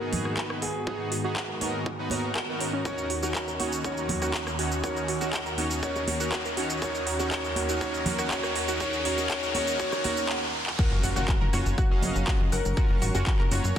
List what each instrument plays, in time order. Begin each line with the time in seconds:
Already playing: analog synth pad G#2 D#3 B3 F#4, grand piano A#4, riser
0.01 supersaw synth B3 D#4 F#4 G#4
0.13 open hi-hat, high conga, low conga
0.25 cross-stick
0.37 supersaw synth B3 D#4 F#4 B4, synth pluck F#4, kick, clap
0.50 cross-stick
0.62 grand piano G#4, synth pluck F#5, open hi-hat
0.87 supersaw synth B3 D#4 F#4 G#4, synth pluck F#4, kick
1.12 synth pluck F#4, open hi-hat
1.24 supersaw synth B3 D#4 F#4 G#4, synth pluck F#4
1.36 synth pluck F#4, kick, clap
1.49 synth pluck A#4
1.61 supersaw synth B3 D#4 F#4 A#4, synth pluck C#5, open hi-hat, high conga
1.86 synth pluck F#4, kick
1.99 supersaw synth B3 D#4 F#4 B4
2.10 supersaw synth B3 D#4 F#4 A#4, synth pluck C#5, open hi-hat, high conga
2.36 synth pluck F#4, kick, cross-stick, clap
2.48 supersaw synth B3 D#4 F#4 A#4
2.60 synth pluck C#4, open hi-hat
2.73 synth pluck C#4
2.85 analog synth pad D#2 D#3 C#4, supersaw synth C#4 D#4 F#4 A#4, synth pluck F#4, grand piano C#5, kick, shaker
2.98 shaker
3.10 synth pluck F#4, open hi-hat
3.23 supersaw synth C#4 D#4 F#4 A#4, synth pluck F#4, high bongo, shaker
3.35 synth pluck F#4, kick, clap, shaker
3.48 synth pluck A#4, shaker
3.60 supersaw synth C#4 D#4 F#4 C#5, synth pluck F#4, open hi-hat, high conga
3.73 shaker
3.84 supersaw synth C#4 D#4 F#4 A#4, synth pluck F#4, grand piano C#5, kick, shaker
3.97 shaker
4.09 synth pluck F#4, open hi-hat, high bongo, high conga, low conga
4.22 supersaw synth C#4 D#4 F#4 A#4, synth pluck F#4, cross-stick, shaker
4.34 synth pluck F#4, kick, clap, shaker
4.47 synth pluck A#4, cross-stick, shaker
4.59 supersaw synth C#4 D#4 F#4 C#5, synth pluck F#4, open hi-hat
4.72 shaker
4.84 supersaw synth C#4 D#4 F#4 A#4, synth pluck F#4, grand piano C#5, kick, shaker
4.96 shaker
5.08 synth pluck F#4, open hi-hat
5.21 supersaw synth C#4 D#4 F#4 A#4, synth pluck F#4, high bongo, shaker
5.33 synth pluck F#4, kick, clap, shaker
5.46 synth pluck A#4, shaker
5.58 supersaw synth C#4 D#4 F#4 C#5, synth pluck F#4, open hi-hat, high conga
5.71 shaker
5.83 supersaw synth C#4 D#4 F#4 A#4, synth pluck F#4, grand piano C#5, kick, shaker
5.96 high bongo, shaker
6.07 synth pluck F#4, open hi-hat, high conga
6.20 supersaw synth C#4 D#4 F#4 A#4, synth pluck F#4, shaker
6.32 synth pluck F#4, kick, cross-stick, clap, shaker
6.45 synth pluck A#4, shaker
6.57 supersaw synth C#4 D#4 F#4 C#5, synth pluck F#4, open hi-hat
6.70 shaker
6.82 analog synth pad D#2 A#4, supersaw synth C#4 D#4 F#4 A#4, synth pluck F#4, grand piano C#5, kick, shaker
6.95 shaker
7.07 synth pluck F#4, open hi-hat
7.19 supersaw synth C#4 D#4 F#4 A#4, synth pluck F#4, high bongo, shaker
7.32 supersaw synth C#4 D#4 F#4 A#4, synth pluck F#4, grand piano C#5, kick, clap, shaker
7.44 shaker
7.56 synth pluck F#4, open hi-hat, high conga
7.69 supersaw synth C#4 D#4 F#4 A#4, synth pluck F#4, shaker
7.81 supersaw synth C#4 D#4 F#4 A#4, synth pluck F#4, grand piano C#5, kick, shaker
7.94 shaker
8.06 synth pluck F#4, open hi-hat, high bongo, high conga, low conga
8.19 supersaw synth C#4 D#4 F#4 A#4, synth pluck F#4, cross-stick, shaker
8.31 supersaw synth C#4 D#4 F#4 A#4, synth pluck F#4, grand piano C#5, kick, clap, shaker
8.43 cross-stick, shaker
8.56 synth pluck F#4, open hi-hat
8.68 supersaw synth C#4 D#4 F#4 A#4, synth pluck F#4, shaker
8.80 supersaw synth C#4 D#4 F#4 A#4, synth pluck F#4, analog synth pad G#4, grand piano C#5, kick, shaker
8.93 shaker
9.05 supersaw synth C#4 D#4 F#4 A#4, synth pluck F#4, grand piano C#5, open hi-hat
9.18 high bongo, shaker
9.30 supersaw synth C#4 D#4 F#4 A#4, synth pluck F#4, grand piano C#5, kick, clap, shaker
9.43 shaker
9.54 supersaw synth C#4 D#4 F#4 A#4, synth pluck F#4, grand piano C#5, open hi-hat, high conga
9.68 shaker
9.79 supersaw synth C#4 D#4 F#4 A#4, synth pluck F#4, grand piano C#5, kick, shaker
9.92 cross-stick, high bongo, shaker
10.04 supersaw synth C#4 D#4 F#4 A#4, synth pluck F#4, grand piano C#5, open hi-hat, high conga
10.17 shaker
10.29 clap
10.67 clap
10.79 analog synth pad F#3 C#4 A#4 F5, supersaw synth C#4 F4 F#4 A#4, synth pluck F#4 F#5, grand piano A#4, synth texture C#5 A#5, kick, crash, impact, shaker
10.91 analog synth bass F#1
11.04 analog synth bass F#1, synth pluck F#4 F#5, open hi-hat, shaker
11.16 analog synth bass F#1, supersaw synth C#4 F4 F#4 A#4, synth pluck F#4 F#5, high bongo, shaker
11.28 synth pluck F#4 F#5, kick, clap, shaker
11.41 analog synth bass F#1, synth pluck A#4 A#5
11.53 analog synth bass F#1, supersaw synth C#4 F4 F#4 C#5, synth pluck F#4 F#5, cross-stick, open hi-hat, high conga, shaker
11.66 analog synth bass F#1, shaker
11.78 synth pluck F#4 F#5, grand piano F#4, kick, shaker
11.91 analog synth bass F#1, supersaw synth C#4 F#4 D#5 F5
12.02 analog synth bass F#1, open hi-hat, high bongo, high conga, low conga, shaker
12.15 analog synth bass F#1, shaker
12.27 supersaw synth C#4 F4 F#4 D#5, synth pluck F#4 F#5, kick, clap, shaker
12.40 analog synth bass F#1, low conga
12.52 analog synth bass F#1, grand piano A#4, synth pluck F#5 F#6, open hi-hat, shaker
12.65 analog synth bass F#1, shaker
12.77 supersaw synth C#4 F4 F#4 A#4, synth pluck F#4 F#5, kick, shaker
12.90 analog synth bass F#1
13.02 analog synth bass G#1, synth pluck F#4 F#5, open hi-hat, shaker
13.15 analog synth bass F#1, supersaw synth C#4 F4 F#4 A#4, synth pluck F#4 F#5, high bongo, shaker
13.27 synth pluck F#4 F#5, kick, clap, shaker
13.39 analog synth bass F#1, synth pluck A#4 A#5, clap
13.51 analog synth bass F#1, supersaw synth C#4 F4 F#4 C#5, synth pluck F#4 F#5, open hi-hat, high conga, shaker
13.64 analog synth bass F#1, shaker